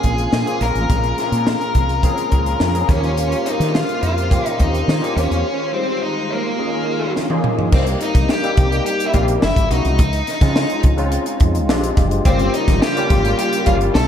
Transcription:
Already playing: string section A#2 G#3 A#3 F4, tine electric piano A#3 C4 C#4 F4 G#4, lead electric guitar G#4
0.03 fretless electric bass A#1, kick, closed hi-hat
0.18 closed hi-hat
0.33 fretless electric bass A#2, snare
0.46 tine electric piano A#3 C4 C#4 F4 G#4, closed hi-hat
0.61 fretless electric bass A#1, lead electric guitar A#4, snare, closed hi-hat
0.75 fretless electric bass A1, closed hi-hat
0.90 fretless electric bass A#1, kick, closed hi-hat
1.04 closed hi-hat
1.18 tine electric piano A#3 C4 C#4 F4 G#4, snare, closed hi-hat
1.32 fretless electric bass A#2, closed hi-hat
1.47 snare
1.61 closed hi-hat
1.75 fretless electric bass C2, kick, closed hi-hat
1.89 closed hi-hat
2.03 tine electric piano A#3 C4 C#4 F4 G#4, kick, closed hi-hat
2.18 closed hi-hat
2.32 fretless electric bass C#2, kick, closed hi-hat
2.46 closed hi-hat
2.60 fretless electric bass F2, snare
2.73 tine electric piano A#3 C4 C#4 F4 G#4, closed hi-hat
2.87 fretless electric bass D#2, string section G3 C5, tine electric piano A#3 C#4 F4 G4 C5, lead electric guitar C#4, kick, snare, closed hi-hat
3.04 closed hi-hat
3.18 closed hi-hat
3.32 closed hi-hat
3.44 tine electric piano A#3 C4 C#4 F4 G#4, lead electric guitar D#4, closed hi-hat
3.52 tine electric piano A#4
3.60 fretless electric bass D#3, snare, closed hi-hat
3.74 lead electric guitar F4, snare
3.89 closed hi-hat
4.03 fretless electric bass F2, lead electric guitar F4, closed hi-hat
4.18 closed hi-hat
4.30 tine electric piano A#3 C4 C#4 F4 G4, kick, closed hi-hat
4.46 lead electric guitar D#4, closed hi-hat
4.60 fretless electric bass D#2, lead electric guitar D#4, kick, closed hi-hat
4.75 closed hi-hat
4.88 fretless electric bass D#3, snare
5.01 tine electric piano A#3 C4 C#4 F4 G4, closed hi-hat
5.16 fretless electric bass D#2, lead electric guitar C#4, closed hi-hat
5.31 fretless electric bass E2, closed hi-hat
5.45 string section D#3 G#3
5.72 tine electric piano G3 C4 D#4 F4 G4, lead electric guitar C4
5.79 tine electric piano G#3
6.02 lead electric guitar D#4
6.30 lead electric guitar A#3
6.58 string section D#3 C#4 F4, tine electric piano A#3 C#4 D#4 F4 G#4
7.16 snare
7.29 tine electric piano A#3 C#4 D#4 F4 G#4, high tom
7.44 mid tom
7.59 floor tom
7.72 fretless electric bass C2, tine electric piano G3 A#3 C4 D#4 G4, lead electric guitar C4, kick, crash
7.87 closed hi-hat
8.01 lead electric guitar D#4, closed hi-hat
8.15 fretless electric bass C2, kick, snare, closed hi-hat
8.29 lead electric guitar G4, snare
8.42 tine electric piano G3 A#3 C4 D#4 G4, closed hi-hat
8.57 fretless electric bass C2, kick, closed hi-hat
8.72 closed hi-hat
8.86 lead electric guitar G4, closed hi-hat
9.00 closed hi-hat
9.07 lead electric guitar E4
9.13 fretless electric bass A#1, tine electric piano G3 A#3 C4 D#4 G4, lead electric guitar F4, kick, closed hi-hat
9.28 closed hi-hat
9.42 fretless electric bass F#1, lead electric guitar E4, snare
9.56 fretless electric bass G#1, kick, closed hi-hat
9.69 fretless electric bass B1, tine electric piano G#3 A#3 C#4 E4 F#4, lead electric guitar D#4, closed hi-hat
9.85 fretless electric bass C2, closed hi-hat
9.99 fretless electric bass C#2, kick, closed hi-hat
10.13 closed hi-hat
10.27 snare, closed hi-hat
10.41 fretless electric bass C#3, tine electric piano G#3 C4 C#4 D#4 F4, kick, snare, closed hi-hat
10.56 snare
10.70 closed hi-hat
10.83 fretless electric bass C#2, kick, closed hi-hat
10.97 tine electric piano G#3 C4 C#4 D#4 F4, closed hi-hat
11.12 closed hi-hat
11.26 closed hi-hat
11.40 fretless electric bass F2, kick, closed hi-hat
11.55 closed hi-hat
11.68 fretless electric bass A#1, tine electric piano G#3 C4 D4 F4 G4, snare
11.84 closed hi-hat
11.97 fretless electric bass F#1, kick, snare, closed hi-hat
12.11 closed hi-hat
12.25 fretless electric bass G1, string section C#3 G3 A#3 F4, tine electric piano G3 A3 C#4 F4 G4, lead electric guitar C4, kick, closed hi-hat
12.31 tine electric piano A#3
12.39 closed hi-hat
12.54 lead electric guitar D#4, closed hi-hat
12.68 fretless electric bass G1, kick, snare, closed hi-hat
12.82 lead electric guitar G4, snare
12.96 tine electric piano G3 A#3 C#4 F4 G4, closed hi-hat
13.10 fretless electric bass G#1, kick, closed hi-hat
13.25 closed hi-hat
13.39 lead electric guitar G4, closed hi-hat
13.53 closed hi-hat
13.66 fretless electric bass G1, tine electric piano G3 A#3 C#4 F4 G4, lead electric guitar F4, kick, closed hi-hat
13.81 closed hi-hat
13.94 fretless electric bass B1, string section D3 A3 C#4 E4, lead electric guitar A4, snare

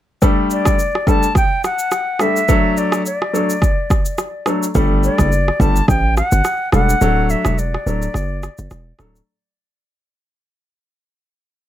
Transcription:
0.22 grand piano G3 A3 D4 A4, kick, shaker
0.51 flute D5, shaker
0.65 kick, cross-stick, shaker
0.79 shaker
0.95 cross-stick
1.07 grand piano G3 A3 D4 A4, flute A5, kick, shaker
1.23 shaker
1.35 flute G5, kick, cross-stick, shaker
1.64 flute F#5, cross-stick, shaker
1.79 shaker
1.92 cross-stick, shaker
2.19 grand piano G3 A3 D4 A4, flute E5, cross-stick, shaker
2.36 shaker
2.49 grand piano F#3 A3 D4 A4, kick, shaker
2.77 flute D5, shaker
2.92 cross-stick, shaker
3.06 flute D5, shaker
3.22 cross-stick
3.33 grand piano F#3 A3 D4 A4, shaker
3.50 shaker
3.62 kick, cross-stick, shaker
3.90 kick, cross-stick, shaker
4.05 shaker
4.18 cross-stick, shaker
4.46 grand piano F#3 A3 D4 A4, cross-stick, shaker
4.63 shaker
4.75 808-style bass G1, grand piano G3 A3 D4 A4, kick, shaker
5.04 flute D5, shaker
5.18 808-style bass F#1, kick, cross-stick, shaker
5.32 shaker
5.48 cross-stick
5.60 808-style bass G1, grand piano G3 A3 D4 A4, flute A5, kick, shaker
5.76 shaker
5.88 808-style bass A1, flute G5, kick, cross-stick, shaker
6.17 flute F#5, cross-stick, shaker
6.32 808-style bass G1, shaker
6.45 cross-stick, shaker
6.72 808-style bass E1, grand piano G3 A3 D4 A4, flute F#5, cross-stick, shaker
6.89 shaker
7.01 808-style bass D1, grand piano F#3 A3 D4 A4, shaker
7.30 flute E5, shaker
7.45 808-style bass E1, cross-stick, shaker
7.58 flute D5, shaker
7.74 cross-stick
7.86 808-style bass D1, grand piano F#3 A3 D4 A4, shaker
8.02 shaker
8.14 808-style bass F#1, cross-stick, shaker
8.43 cross-stick, shaker
8.58 808-style bass F#1, shaker
8.71 808-style bass E1, cross-stick, shaker
8.99 808-style bass D1, grand piano F#3 A3 D4 A4, cross-stick, shaker
9.16 shaker

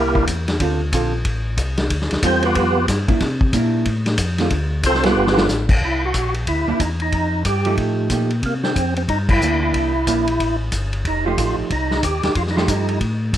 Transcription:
Already playing: tonewheel organ C2 A#3 E4 G4 A#4
0.15 hollow-body jazz guitar E3 A#3 D4, kick
0.27 tonewheel organ E2, kick, hi-hat pedal, ride
0.48 snare, ride
0.60 tonewheel organ D2, hollow-body jazz guitar D3 C4 F4 A4, kick, ride
0.92 tonewheel organ A#1, hollow-body jazz guitar D3 C4 F4 A4, kick, hi-hat pedal, ride
1.25 tonewheel organ A1, kick, ride
1.57 tonewheel organ C2, kick, hi-hat pedal, ride
1.77 snare, ride
1.90 tonewheel organ D2, kick, ride
2.01 snare
2.11 tonewheel organ D2, snare, ride
2.22 tonewheel organ E2 C4 C5, hollow-body jazz guitar G3 B3 F4 A4, kick, hi-hat pedal, ride
2.42 tonewheel organ B3 F4 G4 B4, ride
2.55 tonewheel organ F2, kick, ride
2.88 tonewheel organ G2, kick, snare, hi-hat pedal, ride
3.08 tonewheel organ G2, hollow-body jazz guitar A#3 D4 E4, kick, ride
3.20 tonewheel organ C3, kick, snare, ride
3.41 kick
3.53 tonewheel organ A#2, hollow-body jazz guitar A#3 D4 E4, kick, hi-hat pedal, ride
3.85 tonewheel organ A2, kick, ride
4.06 snare, ride
4.18 tonewheel organ F2, kick, hi-hat pedal, ride
4.38 hollow-body jazz guitar D3 A3 C4 F4, snare, ride
4.50 tonewheel organ D2, kick, ride
4.83 tonewheel organ C2 C4 F4 A4 C5, kick, hi-hat pedal, ride
4.94 snare
5.03 hollow-body jazz guitar G3 B3 F4 A4, tonewheel organ B3 F4 G4 B4, snare, ride
5.16 tonewheel organ G1
5.27 snare
5.36 hollow-body jazz guitar G3 B3 F4 A4, snare
5.48 tonewheel organ A1, snare, hi-hat pedal
5.69 kick, crash
5.81 tonewheel organ C2 E4, kick
6.05 tonewheel organ F#4
6.14 tonewheel organ A#1, kick, hi-hat pedal, ride
6.34 ride
6.47 tonewheel organ D2 E4, kick, ride
6.67 tonewheel organ D2, hollow-body jazz guitar A#3 D4 E4
6.79 tonewheel organ E2 D#4, kick, hi-hat pedal, ride
7.00 tonewheel organ D#4, ride
7.12 tonewheel organ F2, kick, ride
7.45 tonewheel organ G2 G4, kick, hi-hat pedal, ride
7.65 hollow-body jazz guitar F3 A3 D#4 G4, ride
7.77 tonewheel organ A2, kick, ride
8.10 tonewheel organ A#2, hollow-body jazz guitar F3 A3 D#4 G4, kick, hi-hat pedal, ride
8.30 ride
8.42 tonewheel organ C3 A#3, kick, ride
8.63 tonewheel organ C4, snare
8.75 tonewheel organ F2, kick, hi-hat pedal, ride
8.96 tonewheel organ C4, ride
9.08 tonewheel organ G2 D#4, kick, ride
9.29 tonewheel organ E4, kick, crash
9.41 tonewheel organ D2, hollow-body jazz guitar E3 A#3 D4, hi-hat pedal
9.63 tonewheel organ E4
9.74 tonewheel organ C2, kick, ride
10.06 tonewheel organ A#1, hollow-body jazz guitar E3 A#3 D4, kick, hi-hat pedal, ride
10.27 ride
10.39 tonewheel organ A1, kick, ride
10.72 tonewheel organ G1, kick, hi-hat pedal, ride
10.93 ride
11.05 tonewheel organ F1 D#4, kick, ride
11.26 hollow-body jazz guitar F3 A3 D#4 G4, tonewheel organ F4
11.38 tonewheel organ A1, kick, hi-hat pedal, ride
11.57 tonewheel organ A1
11.70 tonewheel organ C2 D#4, kick, ride
11.91 snare
12.02 tonewheel organ D#2 G4, kick, hi-hat pedal, ride
12.23 tonewheel organ D#2, snare, ride
12.35 tonewheel organ F2 F4, kick, ride
12.47 snare
12.51 tonewheel organ D#4
12.57 hollow-body jazz guitar F3 A3 D#4 G4, tonewheel organ F4, snare
12.67 tonewheel organ G2 D#4, kick, hi-hat pedal, ride
12.89 ride
13.00 tonewheel organ A2, kick, ride
13.33 tonewheel organ G2, kick, hi-hat pedal, ride

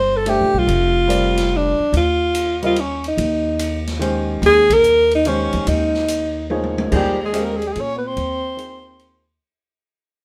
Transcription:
Already playing: upright bass G1, alto saxophone C5
0.17 alto saxophone A4
0.26 grand piano A3 D4 G4 C5 E5, alto saxophone G4, ride
0.41 upright bass A#1
0.54 upright bass B1
0.59 alto saxophone F4
0.68 upright bass F1, ride
1.08 grand piano G3 C4 F4 A#4 D5, hi-hat pedal, ride
1.37 snare, ride
1.56 alto saxophone D4
1.79 muted upright bass stroke
1.93 upright bass D#2, ride
1.97 alto saxophone F4
2.35 hi-hat pedal, ride
2.62 grand piano G3 C4 F4 A#4 D#5, alto saxophone F4, ride
2.76 alto saxophone C#4, ride
3.04 alto saxophone D#4, ride
3.18 upright bass D#2, ride
3.59 hi-hat pedal, ride
3.87 snare, ride
3.99 grand piano D#3 G#3 C#4 G4 C5, ride
4.42 upright bass D#2, ride
4.46 alto saxophone G#4
4.70 alto saxophone A#4, kick, ride
4.84 hi-hat pedal
5.11 alto saxophone D#4, ride
5.25 grand piano D#3 G#3 C#4 G4 C5, alto saxophone C#4, ride
5.53 upright bass E2, ride
5.67 upright bass D#2, alto saxophone D#4, ride
5.94 snare
6.08 hi-hat pedal, ride
6.50 grand piano F3 A#3 D#4 G#4 C#5, high tom
6.63 high tom
6.78 high tom
6.91 upright bass D#2, grand piano F3 A#3 D#4 G#4 C5, trombone G3, kick, crash
6.96 alto saxophone G4
7.22 trombone G#3, alto saxophone G#4
7.32 grand piano G#3 C#4 G4 C5 D#5, hi-hat pedal, ride
7.40 trombone A#3, alto saxophone A#4
7.53 trombone G#3, alto saxophone G#4
7.62 trombone G3, ride
7.68 trombone G#3, alto saxophone G4
7.73 upright bass A#2, alto saxophone G#4, ride
7.79 trombone C#4, alto saxophone C#5
7.96 trombone B3, alto saxophone B4
8.06 trombone C4, alto saxophone C5
8.17 upright bass D#2, ride
8.57 grand piano F3 A#3 D#4 G#4 C5, hi-hat pedal, ride
8.99 ride

